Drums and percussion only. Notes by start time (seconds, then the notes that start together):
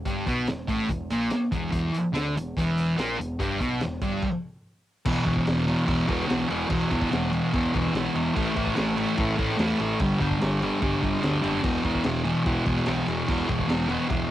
0.05 kick, closed hi-hat
0.26 kick, closed hi-hat
0.47 snare, closed hi-hat
0.68 kick, closed hi-hat
0.89 kick, closed hi-hat
1.10 closed hi-hat
1.30 snare, closed hi-hat
1.52 kick, closed hi-hat
1.72 kick, closed hi-hat
1.94 closed hi-hat
2.15 snare, closed hi-hat
2.37 closed hi-hat
2.57 kick, closed hi-hat
2.77 closed hi-hat
2.99 snare, closed hi-hat
3.21 closed hi-hat
3.40 kick, closed hi-hat
3.60 kick, closed hi-hat
3.80 snare, closed hi-hat
4.02 kick, closed hi-hat
4.22 kick, crash
5.05 kick, crash
5.26 kick, crash
5.37 kick
5.47 snare, crash
5.68 crash
5.88 kick, crash
6.08 kick, crash
6.21 snare
6.30 snare, crash
6.50 crash
6.70 kick, crash
6.91 kick, crash
7.02 kick
7.12 snare, crash
7.33 crash
7.54 kick, crash
7.75 kick, crash
7.87 snare
7.95 snare, crash
8.15 crash
8.37 kick, crash
8.56 kick, crash
8.67 kick
8.77 snare, crash
8.98 crash
9.17 kick, crash
9.39 kick, crash
9.50 snare
9.59 snare, crash
9.80 crash
9.99 kick, crash
10.21 kick, crash
10.31 kick
10.41 snare, crash
10.62 crash
10.82 kick, crash
11.03 kick, crash
11.15 snare
11.23 snare, crash
11.44 crash
11.64 kick, crash
11.85 kick, crash
11.95 kick
12.04 snare, crash
12.25 crash
12.46 kick, crash
12.66 kick, crash
12.77 snare
12.86 snare, crash
13.08 crash
13.28 kick, crash
13.49 kick, crash
13.59 kick
13.69 snare, crash
13.89 crash
14.10 kick, crash